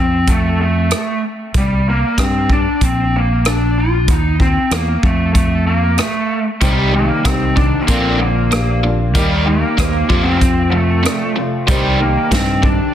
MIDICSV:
0, 0, Header, 1, 7, 480
1, 0, Start_track
1, 0, Tempo, 633580
1, 1173, Time_signature, 4, 2, 24, 8
1, 9803, End_track
2, 0, Start_track
2, 0, Title_t, "Grand piano"
2, 0, Program_c, 0, 0
2, 5004, Note_on_c, 0, 60, 84
2, 5011, Note_on_c, 0, 63, 75
2, 5017, Note_on_c, 0, 67, 90
2, 5334, Note_off_c, 0, 60, 0
2, 5338, Note_off_c, 0, 63, 0
2, 5341, Note_off_c, 0, 67, 0
2, 5487, Note_on_c, 0, 60, 55
2, 5497, Note_on_c, 0, 63, 53
2, 5503, Note_on_c, 0, 67, 69
2, 5816, Note_off_c, 0, 60, 0
2, 5820, Note_off_c, 0, 63, 0
2, 5824, Note_off_c, 0, 67, 0
2, 5959, Note_on_c, 0, 62, 60
2, 5968, Note_on_c, 0, 65, 55
2, 5972, Note_on_c, 0, 70, 68
2, 6291, Note_off_c, 0, 62, 0
2, 6296, Note_off_c, 0, 65, 0
2, 6298, Note_off_c, 0, 70, 0
2, 6446, Note_on_c, 0, 62, 53
2, 6451, Note_on_c, 0, 65, 53
2, 6457, Note_on_c, 0, 67, 67
2, 6775, Note_off_c, 0, 62, 0
2, 6777, Note_off_c, 0, 65, 0
2, 6780, Note_off_c, 0, 67, 0
2, 6924, Note_on_c, 0, 63, 80
2, 6933, Note_on_c, 0, 67, 71
2, 6940, Note_on_c, 0, 70, 89
2, 7254, Note_off_c, 0, 63, 0
2, 7258, Note_off_c, 0, 67, 0
2, 7262, Note_off_c, 0, 70, 0
2, 7402, Note_on_c, 0, 63, 63
2, 7408, Note_on_c, 0, 67, 59
2, 7419, Note_on_c, 0, 72, 65
2, 7646, Note_off_c, 0, 72, 0
2, 7646, Note_on_c, 0, 65, 58
2, 7648, Note_off_c, 0, 63, 0
2, 7651, Note_off_c, 0, 67, 0
2, 7651, Note_on_c, 0, 69, 57
2, 7657, Note_on_c, 0, 72, 66
2, 8225, Note_off_c, 0, 65, 0
2, 8228, Note_off_c, 0, 69, 0
2, 8231, Note_off_c, 0, 72, 0
2, 8361, Note_on_c, 0, 65, 59
2, 8369, Note_on_c, 0, 69, 53
2, 8376, Note_on_c, 0, 74, 70
2, 8691, Note_off_c, 0, 65, 0
2, 8695, Note_off_c, 0, 69, 0
2, 8699, Note_off_c, 0, 74, 0
2, 8849, Note_on_c, 0, 63, 82
2, 8856, Note_on_c, 0, 67, 78
2, 8858, Note_on_c, 0, 72, 98
2, 9175, Note_off_c, 0, 63, 0
2, 9178, Note_off_c, 0, 67, 0
2, 9180, Note_off_c, 0, 72, 0
2, 9329, Note_on_c, 0, 63, 70
2, 9332, Note_on_c, 0, 67, 61
2, 9342, Note_on_c, 0, 75, 68
2, 9654, Note_off_c, 0, 63, 0
2, 9656, Note_off_c, 0, 67, 0
2, 9661, Note_off_c, 0, 75, 0
2, 9803, End_track
3, 0, Start_track
3, 0, Title_t, "Steel-string acoustic guitar"
3, 0, Program_c, 1, 25
3, 5005, Note_on_c, 1, 48, 62
3, 5013, Note_on_c, 1, 51, 60
3, 5017, Note_on_c, 1, 60, 69
3, 5022, Note_on_c, 1, 67, 78
3, 5023, Note_on_c, 1, 63, 71
3, 5474, Note_off_c, 1, 51, 0
3, 5481, Note_off_c, 1, 60, 0
3, 5484, Note_on_c, 1, 51, 49
3, 5490, Note_off_c, 1, 48, 0
3, 5490, Note_on_c, 1, 60, 53
3, 5491, Note_off_c, 1, 63, 0
3, 5498, Note_off_c, 1, 67, 0
3, 5500, Note_on_c, 1, 63, 58
3, 5508, Note_on_c, 1, 67, 59
3, 5966, Note_on_c, 1, 46, 68
3, 5967, Note_off_c, 1, 51, 0
3, 5970, Note_on_c, 1, 53, 66
3, 5973, Note_off_c, 1, 60, 0
3, 5977, Note_off_c, 1, 63, 0
3, 5977, Note_on_c, 1, 58, 64
3, 5981, Note_off_c, 1, 67, 0
3, 5981, Note_on_c, 1, 62, 74
3, 5985, Note_on_c, 1, 65, 72
3, 6434, Note_off_c, 1, 53, 0
3, 6443, Note_on_c, 1, 53, 49
3, 6445, Note_off_c, 1, 58, 0
3, 6450, Note_off_c, 1, 46, 0
3, 6454, Note_on_c, 1, 58, 54
3, 6457, Note_off_c, 1, 62, 0
3, 6460, Note_off_c, 1, 65, 0
3, 6465, Note_on_c, 1, 62, 53
3, 6471, Note_on_c, 1, 65, 52
3, 6678, Note_off_c, 1, 65, 0
3, 6687, Note_on_c, 1, 65, 44
3, 6688, Note_off_c, 1, 53, 0
3, 6691, Note_off_c, 1, 62, 0
3, 6694, Note_off_c, 1, 58, 0
3, 6700, Note_on_c, 1, 62, 40
3, 6712, Note_on_c, 1, 58, 40
3, 6919, Note_off_c, 1, 58, 0
3, 6925, Note_on_c, 1, 51, 65
3, 6928, Note_on_c, 1, 58, 67
3, 6931, Note_off_c, 1, 65, 0
3, 6933, Note_off_c, 1, 62, 0
3, 6936, Note_on_c, 1, 63, 71
3, 6942, Note_on_c, 1, 67, 76
3, 7395, Note_off_c, 1, 51, 0
3, 7404, Note_on_c, 1, 51, 51
3, 7405, Note_off_c, 1, 58, 0
3, 7412, Note_off_c, 1, 63, 0
3, 7414, Note_on_c, 1, 58, 60
3, 7418, Note_off_c, 1, 67, 0
3, 7422, Note_on_c, 1, 63, 58
3, 7431, Note_on_c, 1, 67, 60
3, 7640, Note_off_c, 1, 67, 0
3, 7643, Note_on_c, 1, 65, 59
3, 7645, Note_off_c, 1, 63, 0
3, 7648, Note_on_c, 1, 60, 53
3, 7649, Note_off_c, 1, 51, 0
3, 7653, Note_off_c, 1, 58, 0
3, 7656, Note_on_c, 1, 57, 47
3, 7660, Note_on_c, 1, 53, 50
3, 7661, Note_on_c, 1, 48, 46
3, 7663, Note_on_c, 1, 41, 41
3, 8354, Note_off_c, 1, 53, 0
3, 8363, Note_on_c, 1, 53, 52
3, 8365, Note_off_c, 1, 57, 0
3, 8368, Note_off_c, 1, 65, 0
3, 8370, Note_off_c, 1, 60, 0
3, 8374, Note_on_c, 1, 57, 50
3, 8376, Note_off_c, 1, 48, 0
3, 8377, Note_off_c, 1, 41, 0
3, 8380, Note_on_c, 1, 60, 57
3, 8389, Note_on_c, 1, 65, 57
3, 8591, Note_off_c, 1, 65, 0
3, 8600, Note_on_c, 1, 65, 49
3, 8602, Note_off_c, 1, 60, 0
3, 8608, Note_off_c, 1, 53, 0
3, 8611, Note_off_c, 1, 57, 0
3, 8611, Note_on_c, 1, 60, 45
3, 8620, Note_on_c, 1, 57, 40
3, 8627, Note_on_c, 1, 53, 35
3, 8841, Note_off_c, 1, 53, 0
3, 8841, Note_on_c, 1, 48, 72
3, 8844, Note_off_c, 1, 60, 0
3, 8844, Note_on_c, 1, 51, 80
3, 8846, Note_off_c, 1, 65, 0
3, 8850, Note_off_c, 1, 57, 0
3, 8853, Note_on_c, 1, 60, 71
3, 8853, Note_on_c, 1, 63, 78
3, 8862, Note_on_c, 1, 67, 80
3, 9317, Note_off_c, 1, 51, 0
3, 9324, Note_off_c, 1, 60, 0
3, 9326, Note_off_c, 1, 48, 0
3, 9326, Note_on_c, 1, 51, 59
3, 9332, Note_off_c, 1, 63, 0
3, 9333, Note_on_c, 1, 60, 63
3, 9336, Note_off_c, 1, 67, 0
3, 9354, Note_on_c, 1, 67, 63
3, 9803, Note_off_c, 1, 51, 0
3, 9803, Note_off_c, 1, 60, 0
3, 9803, Note_off_c, 1, 67, 0
3, 9803, End_track
4, 0, Start_track
4, 0, Title_t, "Lead electric guitar"
4, 0, Program_c, 2, 29
4, 0, Note_on_c, 2, 60, 69
4, 217, Note_on_c, 2, 57, 76
4, 221, Note_off_c, 2, 60, 0
4, 438, Note_off_c, 2, 57, 0
4, 466, Note_on_c, 2, 57, 61
4, 909, Note_off_c, 2, 57, 0
4, 1195, Note_on_c, 2, 55, 68
4, 1431, Note_off_c, 2, 55, 0
4, 1435, Note_on_c, 2, 58, 67
4, 1669, Note_on_c, 2, 60, 80
4, 1671, Note_off_c, 2, 58, 0
4, 1908, Note_off_c, 2, 60, 0
4, 1917, Note_on_c, 2, 62, 69
4, 2152, Note_off_c, 2, 62, 0
4, 2156, Note_on_c, 2, 60, 82
4, 2392, Note_off_c, 2, 60, 0
4, 2394, Note_on_c, 2, 58, 68
4, 2629, Note_on_c, 2, 62, 88
4, 2631, Note_off_c, 2, 58, 0
4, 2864, Note_on_c, 2, 65, 82
4, 2869, Note_off_c, 2, 62, 0
4, 3095, Note_on_c, 2, 63, 81
4, 3107, Note_off_c, 2, 65, 0
4, 3339, Note_off_c, 2, 63, 0
4, 3343, Note_on_c, 2, 60, 65
4, 3575, Note_on_c, 2, 58, 73
4, 3586, Note_off_c, 2, 60, 0
4, 3821, Note_off_c, 2, 58, 0
4, 3824, Note_on_c, 2, 57, 58
4, 4038, Note_off_c, 2, 57, 0
4, 4047, Note_on_c, 2, 57, 73
4, 4292, Note_off_c, 2, 57, 0
4, 4295, Note_on_c, 2, 58, 70
4, 4518, Note_off_c, 2, 58, 0
4, 4537, Note_on_c, 2, 57, 73
4, 4871, Note_off_c, 2, 57, 0
4, 5017, Note_on_c, 2, 55, 63
4, 5255, Note_off_c, 2, 55, 0
4, 5258, Note_on_c, 2, 58, 64
4, 5490, Note_on_c, 2, 60, 68
4, 5504, Note_off_c, 2, 58, 0
4, 5728, Note_off_c, 2, 60, 0
4, 5731, Note_on_c, 2, 62, 65
4, 5918, Note_on_c, 2, 58, 51
4, 5925, Note_off_c, 2, 62, 0
4, 5973, Note_off_c, 2, 58, 0
4, 5978, Note_on_c, 2, 60, 70
4, 6205, Note_on_c, 2, 58, 62
4, 6223, Note_off_c, 2, 60, 0
4, 6659, Note_off_c, 2, 58, 0
4, 6932, Note_on_c, 2, 55, 62
4, 7160, Note_off_c, 2, 55, 0
4, 7163, Note_on_c, 2, 58, 75
4, 7748, Note_on_c, 2, 60, 82
4, 7786, Note_off_c, 2, 58, 0
4, 7855, Note_off_c, 2, 60, 0
4, 7864, Note_on_c, 2, 60, 83
4, 8105, Note_on_c, 2, 57, 69
4, 8126, Note_off_c, 2, 60, 0
4, 8568, Note_off_c, 2, 57, 0
4, 8854, Note_on_c, 2, 55, 74
4, 9099, Note_off_c, 2, 55, 0
4, 9102, Note_on_c, 2, 58, 72
4, 9342, Note_on_c, 2, 60, 88
4, 9344, Note_off_c, 2, 58, 0
4, 9579, Note_off_c, 2, 60, 0
4, 9582, Note_on_c, 2, 62, 70
4, 9803, Note_off_c, 2, 62, 0
4, 9803, End_track
5, 0, Start_track
5, 0, Title_t, "Overdriven electric guitar"
5, 0, Program_c, 3, 29
5, 5008, Note_on_c, 3, 48, 68
5, 5014, Note_on_c, 3, 51, 75
5, 5019, Note_on_c, 3, 55, 77
5, 5237, Note_off_c, 3, 48, 0
5, 5240, Note_off_c, 3, 51, 0
5, 5242, Note_off_c, 3, 55, 0
5, 5255, Note_on_c, 3, 48, 58
5, 5257, Note_on_c, 3, 51, 64
5, 5471, Note_off_c, 3, 48, 0
5, 5472, Note_off_c, 3, 51, 0
5, 5490, Note_on_c, 3, 48, 63
5, 5494, Note_on_c, 3, 51, 71
5, 5709, Note_off_c, 3, 48, 0
5, 5710, Note_off_c, 3, 51, 0
5, 5727, Note_on_c, 3, 48, 55
5, 5729, Note_on_c, 3, 51, 62
5, 5947, Note_off_c, 3, 48, 0
5, 5948, Note_off_c, 3, 51, 0
5, 5965, Note_on_c, 3, 46, 85
5, 5972, Note_on_c, 3, 50, 85
5, 5973, Note_on_c, 3, 58, 92
5, 6195, Note_off_c, 3, 46, 0
5, 6199, Note_off_c, 3, 50, 0
5, 6199, Note_off_c, 3, 58, 0
5, 6206, Note_on_c, 3, 46, 53
5, 6208, Note_on_c, 3, 50, 58
5, 6426, Note_off_c, 3, 46, 0
5, 6427, Note_off_c, 3, 50, 0
5, 6448, Note_on_c, 3, 46, 64
5, 6448, Note_on_c, 3, 50, 58
5, 6667, Note_off_c, 3, 46, 0
5, 6667, Note_off_c, 3, 50, 0
5, 6692, Note_on_c, 3, 46, 50
5, 6695, Note_on_c, 3, 50, 65
5, 6909, Note_off_c, 3, 46, 0
5, 6910, Note_off_c, 3, 50, 0
5, 6932, Note_on_c, 3, 51, 83
5, 6936, Note_on_c, 3, 58, 82
5, 6937, Note_on_c, 3, 63, 83
5, 7158, Note_off_c, 3, 51, 0
5, 7161, Note_off_c, 3, 58, 0
5, 7161, Note_off_c, 3, 63, 0
5, 7172, Note_on_c, 3, 51, 60
5, 7175, Note_on_c, 3, 58, 57
5, 7389, Note_off_c, 3, 51, 0
5, 7390, Note_off_c, 3, 58, 0
5, 7404, Note_on_c, 3, 51, 62
5, 7408, Note_on_c, 3, 58, 67
5, 7625, Note_off_c, 3, 51, 0
5, 7627, Note_off_c, 3, 58, 0
5, 7646, Note_on_c, 3, 41, 75
5, 7648, Note_on_c, 3, 48, 75
5, 7650, Note_on_c, 3, 53, 81
5, 7875, Note_off_c, 3, 41, 0
5, 7876, Note_off_c, 3, 48, 0
5, 7877, Note_off_c, 3, 53, 0
5, 7888, Note_on_c, 3, 41, 66
5, 7892, Note_on_c, 3, 48, 74
5, 8106, Note_off_c, 3, 41, 0
5, 8109, Note_off_c, 3, 48, 0
5, 8123, Note_on_c, 3, 41, 55
5, 8125, Note_on_c, 3, 48, 62
5, 8344, Note_off_c, 3, 41, 0
5, 8345, Note_off_c, 3, 48, 0
5, 8359, Note_on_c, 3, 41, 74
5, 8365, Note_on_c, 3, 48, 67
5, 8581, Note_off_c, 3, 41, 0
5, 8585, Note_off_c, 3, 48, 0
5, 8606, Note_on_c, 3, 41, 60
5, 8608, Note_on_c, 3, 48, 66
5, 8825, Note_off_c, 3, 41, 0
5, 8826, Note_off_c, 3, 48, 0
5, 8842, Note_on_c, 3, 48, 81
5, 8846, Note_on_c, 3, 51, 77
5, 8849, Note_on_c, 3, 55, 96
5, 9072, Note_off_c, 3, 48, 0
5, 9075, Note_off_c, 3, 51, 0
5, 9076, Note_off_c, 3, 55, 0
5, 9084, Note_on_c, 3, 48, 56
5, 9087, Note_on_c, 3, 51, 72
5, 9304, Note_off_c, 3, 48, 0
5, 9305, Note_off_c, 3, 51, 0
5, 9327, Note_on_c, 3, 48, 64
5, 9328, Note_on_c, 3, 51, 75
5, 9545, Note_off_c, 3, 48, 0
5, 9546, Note_off_c, 3, 51, 0
5, 9561, Note_on_c, 3, 48, 55
5, 9566, Note_on_c, 3, 51, 67
5, 9782, Note_off_c, 3, 48, 0
5, 9784, Note_off_c, 3, 51, 0
5, 9803, End_track
6, 0, Start_track
6, 0, Title_t, "Fingered electric bass"
6, 0, Program_c, 4, 33
6, 0, Note_on_c, 4, 41, 76
6, 696, Note_off_c, 4, 41, 0
6, 1170, Note_on_c, 4, 36, 78
6, 1534, Note_off_c, 4, 36, 0
6, 1653, Note_on_c, 4, 43, 69
6, 2016, Note_off_c, 4, 43, 0
6, 2131, Note_on_c, 4, 34, 76
6, 3095, Note_off_c, 4, 34, 0
6, 3095, Note_on_c, 4, 39, 83
6, 3457, Note_off_c, 4, 39, 0
6, 3570, Note_on_c, 4, 40, 73
6, 3753, Note_off_c, 4, 40, 0
6, 3812, Note_on_c, 4, 41, 75
6, 4537, Note_off_c, 4, 41, 0
6, 5014, Note_on_c, 4, 36, 82
6, 5376, Note_off_c, 4, 36, 0
6, 5494, Note_on_c, 4, 36, 73
6, 5856, Note_off_c, 4, 36, 0
6, 5972, Note_on_c, 4, 34, 76
6, 6930, Note_off_c, 4, 34, 0
6, 6930, Note_on_c, 4, 39, 78
6, 7293, Note_off_c, 4, 39, 0
6, 7410, Note_on_c, 4, 39, 75
6, 7593, Note_off_c, 4, 39, 0
6, 7649, Note_on_c, 4, 41, 84
6, 8374, Note_off_c, 4, 41, 0
6, 8851, Note_on_c, 4, 36, 83
6, 9213, Note_off_c, 4, 36, 0
6, 9328, Note_on_c, 4, 43, 84
6, 9691, Note_off_c, 4, 43, 0
6, 9803, End_track
7, 0, Start_track
7, 0, Title_t, "Drums"
7, 206, Note_on_c, 9, 42, 47
7, 209, Note_on_c, 9, 36, 79
7, 282, Note_off_c, 9, 42, 0
7, 285, Note_off_c, 9, 36, 0
7, 687, Note_on_c, 9, 42, 49
7, 695, Note_on_c, 9, 37, 81
7, 762, Note_off_c, 9, 42, 0
7, 771, Note_off_c, 9, 37, 0
7, 1167, Note_on_c, 9, 42, 55
7, 1170, Note_on_c, 9, 36, 98
7, 1243, Note_off_c, 9, 42, 0
7, 1246, Note_off_c, 9, 36, 0
7, 1650, Note_on_c, 9, 36, 69
7, 1651, Note_on_c, 9, 42, 55
7, 1659, Note_on_c, 9, 37, 92
7, 1726, Note_off_c, 9, 36, 0
7, 1726, Note_off_c, 9, 42, 0
7, 1735, Note_off_c, 9, 37, 0
7, 1890, Note_on_c, 9, 36, 71
7, 1966, Note_off_c, 9, 36, 0
7, 2131, Note_on_c, 9, 36, 81
7, 2132, Note_on_c, 9, 42, 46
7, 2207, Note_off_c, 9, 36, 0
7, 2208, Note_off_c, 9, 42, 0
7, 2613, Note_on_c, 9, 42, 46
7, 2622, Note_on_c, 9, 37, 87
7, 2689, Note_off_c, 9, 42, 0
7, 2697, Note_off_c, 9, 37, 0
7, 3089, Note_on_c, 9, 42, 48
7, 3092, Note_on_c, 9, 36, 96
7, 3165, Note_off_c, 9, 42, 0
7, 3168, Note_off_c, 9, 36, 0
7, 3332, Note_on_c, 9, 36, 64
7, 3408, Note_off_c, 9, 36, 0
7, 3570, Note_on_c, 9, 42, 49
7, 3578, Note_on_c, 9, 37, 95
7, 3646, Note_off_c, 9, 42, 0
7, 3654, Note_off_c, 9, 37, 0
7, 3812, Note_on_c, 9, 36, 73
7, 3888, Note_off_c, 9, 36, 0
7, 4052, Note_on_c, 9, 42, 45
7, 4053, Note_on_c, 9, 36, 88
7, 4128, Note_off_c, 9, 36, 0
7, 4128, Note_off_c, 9, 42, 0
7, 4528, Note_on_c, 9, 42, 43
7, 4536, Note_on_c, 9, 37, 90
7, 4604, Note_off_c, 9, 42, 0
7, 4612, Note_off_c, 9, 37, 0
7, 5009, Note_on_c, 9, 42, 57
7, 5011, Note_on_c, 9, 36, 92
7, 5085, Note_off_c, 9, 42, 0
7, 5087, Note_off_c, 9, 36, 0
7, 5492, Note_on_c, 9, 42, 51
7, 5493, Note_on_c, 9, 36, 63
7, 5500, Note_on_c, 9, 37, 91
7, 5568, Note_off_c, 9, 42, 0
7, 5569, Note_off_c, 9, 36, 0
7, 5576, Note_off_c, 9, 37, 0
7, 5733, Note_on_c, 9, 36, 78
7, 5809, Note_off_c, 9, 36, 0
7, 5970, Note_on_c, 9, 42, 51
7, 5972, Note_on_c, 9, 36, 77
7, 6045, Note_off_c, 9, 42, 0
7, 6047, Note_off_c, 9, 36, 0
7, 6451, Note_on_c, 9, 42, 45
7, 6460, Note_on_c, 9, 37, 92
7, 6527, Note_off_c, 9, 42, 0
7, 6535, Note_off_c, 9, 37, 0
7, 6931, Note_on_c, 9, 42, 50
7, 6932, Note_on_c, 9, 36, 93
7, 7007, Note_off_c, 9, 42, 0
7, 7008, Note_off_c, 9, 36, 0
7, 7411, Note_on_c, 9, 36, 65
7, 7414, Note_on_c, 9, 42, 53
7, 7422, Note_on_c, 9, 37, 97
7, 7487, Note_off_c, 9, 36, 0
7, 7490, Note_off_c, 9, 42, 0
7, 7498, Note_off_c, 9, 37, 0
7, 7651, Note_on_c, 9, 36, 76
7, 7726, Note_off_c, 9, 36, 0
7, 7890, Note_on_c, 9, 36, 90
7, 7891, Note_on_c, 9, 42, 46
7, 7966, Note_off_c, 9, 36, 0
7, 7966, Note_off_c, 9, 42, 0
7, 8373, Note_on_c, 9, 42, 44
7, 8381, Note_on_c, 9, 37, 89
7, 8449, Note_off_c, 9, 42, 0
7, 8457, Note_off_c, 9, 37, 0
7, 8850, Note_on_c, 9, 42, 58
7, 8851, Note_on_c, 9, 36, 108
7, 8926, Note_off_c, 9, 36, 0
7, 8926, Note_off_c, 9, 42, 0
7, 9331, Note_on_c, 9, 36, 73
7, 9331, Note_on_c, 9, 42, 60
7, 9339, Note_on_c, 9, 38, 98
7, 9406, Note_off_c, 9, 36, 0
7, 9406, Note_off_c, 9, 42, 0
7, 9415, Note_off_c, 9, 38, 0
7, 9570, Note_on_c, 9, 36, 78
7, 9646, Note_off_c, 9, 36, 0
7, 9803, End_track
0, 0, End_of_file